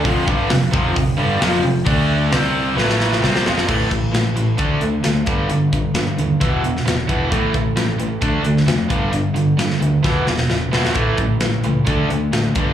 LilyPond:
<<
  \new Staff \with { instrumentName = "Distorted electric guitar" } { \clef bass \time 4/4 \key a \minor \tempo 4 = 132 <f, c f>8 <g, d g>8 <f, c>8 <f, c f>8 <f, c>8 <g, d g>8 <f, c f>8 <f, c>8 | <d a d'>4 <c g c'>4 <a, e a>4 <c g c'>8 <f, c f>8 | <a, e a>8 <a, e>8 <a, e>8 <a, e>8 <d a d'>8 <d a>8 <d a>8 <g, d g>8 | <g, d>8 <g, d>8 <g, d>8 <g, d>8 <e, b, e>8 <e, b,>8 <e, b,>8 <e, b, e>8 |
<a, e a>8 <a, e>8 <a, e>8 <a, e>8 <d a d'>8 <d a>8 <d a>8 <g, d g>8 | <g, d>8 <g, d>8 <g, d>8 <g, d>8 <e, b, e>8 <e, b,>8 <e, b,>8 <e, b, e>8 | <a, e a>8 <a, e>8 <a, e>8 <a, e>8 <d a d'>8 <d a>8 <d a>8 <g, d g>8 | }
  \new Staff \with { instrumentName = "Overdriven electric guitar" } { \clef bass \time 4/4 \key a \minor <f, c f>8 <g, d g>8 <f, c>8 <f, c f>8 <f, c>8 <g, d g>8 <f, c f>8 <f, c>8 | <d a d'>4 <c g c'>4 <a, e a>4 <c g c'>8 <f, c f>8 | <a, e a>8 <a, e>8 <a, e>8 <a, e>8 <d a d'>8 <d a>8 <d a>8 <g, d g>8 | <g, d>8 <g, d>8 <g, d>8 <g, d>8 <e, b, e>8 <e, b,>8 <e, b,>8 <e, b, e>8 |
<a, e a>8 <a, e>8 <a, e>8 <a, e>8 <d a d'>8 <d a>8 <d a>8 <g, d g>8 | <g, d>8 <g, d>8 <g, d>8 <g, d>8 <e, b, e>8 <e, b,>8 <e, b,>8 <e, b, e>8 | <a, e a>8 <a, e>8 <a, e>8 <a, e>8 <d a d'>8 <d a>8 <d a>8 <g, d g>8 | }
  \new Staff \with { instrumentName = "Fingered electric bass" } { \clef bass \time 4/4 \key a \minor f,,8 g,,8 f,,8 f,,8 f,,8 g,,8 f,,8 f,,8 | d,4 c,4 a,,4 c,8 f,,8 | a,,8 a,,8 a,,8 a,,8 d,8 d,8 d,8 g,,8 | g,,8 g,,8 g,,8 dis,8 e,,8 e,,8 e,,8 e,,8 |
a,,8 a,,8 a,,8 a,,8 d,8 d,8 f,,8 g,,8 | g,,8 g,,8 g,,8 d,8 e,,8 e,,8 e,,8 e,,8 | a,,8 a,,8 a,,8 cis,8 d,8 d,8 a,,8 g,,8 | }
  \new DrumStaff \with { instrumentName = "Drums" } \drummode { \time 4/4 <hho bd>8 bd8 <hho sn>8 bd8 <hho bd>4 <hho sn>4 | <hho bd>4 <hho sn>4 sn16 sn16 sn16 sn16 sn16 sn16 sn16 sn16 | <cymc bd>8 <hh bd>8 <hh sn>8 hh8 <hh bd>8 hh8 <hh sn>8 <hh bd>8 | hh8 <hh bd>8 <hh sn>8 hh8 <hh bd>8 hh16 sn16 <hh sn>8 <hh bd>8 |
<hh bd>8 <hh bd>8 <hh sn>8 hh8 <hh bd>8 hh16 sn16 <hh sn>8 <hh bd>8 | hh8 hh8 <hh sn>16 sn16 hh8 <bd sn>8 sn16 sn16 sn8 sn16 sn16 | <hh bd>8 <hh bd>8 <hh sn>8 hh8 <hh bd>8 hh8 <hh sn>8 <hh bd>8 | }
>>